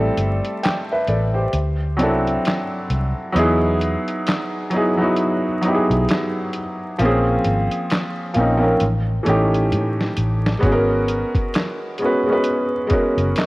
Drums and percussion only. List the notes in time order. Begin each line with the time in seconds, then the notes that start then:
0.17 closed hi-hat
0.45 closed hi-hat
0.63 snare, clap, closed hi-hat
1.07 closed hi-hat
1.53 closed hi-hat
1.99 closed hi-hat
2.27 closed hi-hat
2.45 snare, clap, closed hi-hat
2.90 closed hi-hat
3.36 closed hi-hat
3.81 closed hi-hat
4.08 closed hi-hat
4.27 snare, clap, closed hi-hat
4.71 closed hi-hat
5.17 closed hi-hat
5.63 closed hi-hat
5.91 closed hi-hat
6.09 snare, clap, closed hi-hat
6.53 closed hi-hat
6.99 closed hi-hat
7.44 closed hi-hat
7.71 closed hi-hat
7.90 snare, clap, closed hi-hat
8.34 closed hi-hat
8.80 closed hi-hat
9.26 closed hi-hat
9.54 closed hi-hat
9.72 closed hi-hat
10.01 snare
10.17 closed hi-hat
10.46 snare
10.63 kick, closed hi-hat
11.08 closed hi-hat
11.35 kick, closed hi-hat
11.54 snare, clap, closed hi-hat
11.98 closed hi-hat
12.44 closed hi-hat
12.90 kick, closed hi-hat
13.18 closed hi-hat
13.36 snare, clap, closed hi-hat